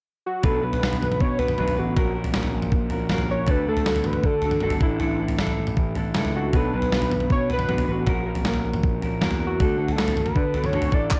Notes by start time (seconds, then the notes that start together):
0.26 F#4
0.42 B1 B2 F#3 B3 D4 F#4 A4 B4, kick, floor tom
0.62 B1 B3 D4 F#4 B4
0.73 floor tom
0.81 B1 B3 D4 F#4 B4, snare
0.93 floor tom
1.02 B1, mid tom
1.12 mid tom
1.20 B2 C#5, kick
1.39 B3 D4 F#4 B4, floor tom
1.48 mid tom
1.58 B1 B2 F#3 B3 D4 F#4 B4, mid tom
1.68 floor tom
1.76 A1 B3 D4 F#4 B4
1.96 A#1 A#3 C#4 F#4 A#4, kick, floor tom
2.14 C#4 F#4 A#4
2.24 floor tom
2.33 A#1 A#3 C#4 F#4 A#4, snare
2.43 floor tom
2.54 A#1
2.62 mid tom
2.72 A#1, kick
2.90 A#1 C#4 F#4 A#4, floor tom
3.09 A#1 A#3 C#4 F#4 A#4, snare, mid tom
3.18 floor tom
3.29 C#4 F#4 A#4 C#5
3.47 D2 D3 D4 F#4 A4 B4, kick, floor tom
3.67 D2 D4 F#4 A4
3.77 floor tom
3.86 D2 D3 D4 F#4 A4, snare
3.96 floor tom
4.04 D2 B4, mid tom
4.13 mid tom
4.24 D3 A4, kick
4.42 D4 F#4 A4, floor tom
4.51 mid tom
4.60 G1 D3 D4 F#4 A4, mid tom
4.70 floor tom
4.81 A1 A2 D3 D4 E4 A4, kick
4.99 A1 A2 D3 D4 E4 A4, floor tom
5.19 D4 E4 A4
5.28 floor tom
5.39 A1 D3 D4 E4 A4, snare
5.47 floor tom
5.58 A1
5.67 mid tom
5.77 A1, kick
5.95 A1 D4 E4 A4, floor tom
6.14 C#2 A2 D3 D4 E4 A4, snare, mid tom
6.25 floor tom
6.35 D4 E4 F#4 A4
6.53 B1 B2 F#3 B3 D4 F#4 A4 B4, kick, floor tom
6.73 B1 B3 D4 F#4 B4
6.82 floor tom
6.91 B1 B3 D4 F#4 B4, snare
7.02 floor tom
7.12 B1, mid tom
7.20 mid tom
7.30 B2 C#5, kick
7.50 B3 D4 F#4 B4, floor tom
7.59 mid tom
7.68 B1 B2 F#3 B3 D4 F#4 B4, mid tom
7.78 floor tom
7.87 A1 B3 D4 F#4 B4
7.92 F#4
8.06 A#1 A#3 C#4 F#4 A#4, kick, floor tom
8.26 C#4 F#4 A#4
8.35 floor tom
8.44 A#1 A#3 C#4 F#4 A#4, snare
8.54 floor tom
8.64 A#1
8.74 mid tom
8.83 A#1, kick
9.02 A#1 C#4 F#4 A#4, floor tom
9.21 E2 A#3 C#4 F#4 A#4, snare, mid tom
9.31 floor tom
9.40 C#4 F#4 A#4
9.47 F#4
9.60 D2 D3 D4 F#4 A4, kick, floor tom
9.78 D2 D4 F#4 A4
9.88 A4, floor tom
9.96 D2 D3 D4 F#4 A4, snare
10.08 floor tom
10.16 D2, mid tom
10.21 B4
10.26 mid tom
10.36 D3, kick
10.54 D4 F#4 A4, floor tom
10.64 C#5, mid tom
10.73 D2 D3 D4 F#4 A4, mid tom
10.82 floor tom
10.92 A1 A2 D3 D4 E4 A4 D5, kick
11.11 kick, clap